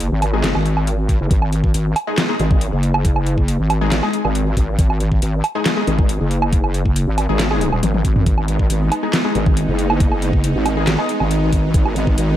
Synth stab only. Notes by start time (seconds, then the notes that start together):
0.33 G#3 D#4 G#4
2.07 G#3 D#4 G#4
2.29 G#3 D#4 G#4
3.81 G#3 D#4 G#4
4.03 G#3 D#4 G#4
5.55 G#3 D#4 G#4
5.77 G#3 D#4 G#4
7.29 G#3 D#4 G#4
7.51 G#3 D#4 G#4
9.03 G#3 D#4 G#4
9.25 G#3 D#4 G#4
10.77 G#3 D#4 G#4
10.99 G#3 D#4 G#4